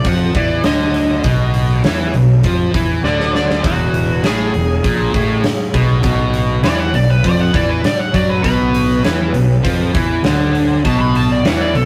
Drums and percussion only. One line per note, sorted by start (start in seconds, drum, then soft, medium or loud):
0.04 kick loud
0.04 open hi-hat medium
0.35 kick loud
0.35 open hi-hat medium
0.64 snare loud
0.64 open hi-hat medium
0.94 snare soft
0.94 open hi-hat medium
1.24 kick loud
1.24 open hi-hat medium
1.54 open hi-hat medium
1.84 snare loud
1.84 open hi-hat medium
2.14 open hi-hat medium
2.43 kick medium
2.43 open hi-hat medium
2.74 kick loud
2.74 open hi-hat medium
3.05 snare medium
3.20 snare medium
3.35 snare medium
3.50 snare medium
3.64 kick loud
3.64 open hi-hat medium
3.94 open hi-hat medium
4.24 snare loud
4.24 open hi-hat medium
4.54 open hi-hat soft
4.84 kick loud
4.84 open hi-hat medium
5.14 kick medium
5.14 open hi-hat medium
5.44 snare loud
5.44 open hi-hat medium
5.74 kick loud
5.74 open hi-hat medium
6.03 kick loud
6.03 open hi-hat medium
6.34 open hi-hat medium
6.64 snare loud
6.64 open hi-hat medium
6.94 open hi-hat medium
7.24 kick loud
7.24 open hi-hat medium
7.54 kick loud
7.54 open hi-hat medium
7.84 snare loud
7.84 open hi-hat medium
8.14 kick medium
8.14 snare soft
8.14 open hi-hat medium
8.44 kick loud
8.44 open hi-hat medium
8.74 open hi-hat medium
9.04 snare loud
9.04 open hi-hat medium
9.34 open hi-hat medium
9.65 kick loud
9.65 open hi-hat medium
9.95 kick loud
9.95 open hi-hat medium
10.24 snare loud
10.24 open hi-hat medium
10.55 open hi-hat medium
10.85 kick loud
10.85 open hi-hat medium
11.15 open hi-hat medium
11.45 snare loud
11.45 open hi-hat medium
11.75 open hi-hat medium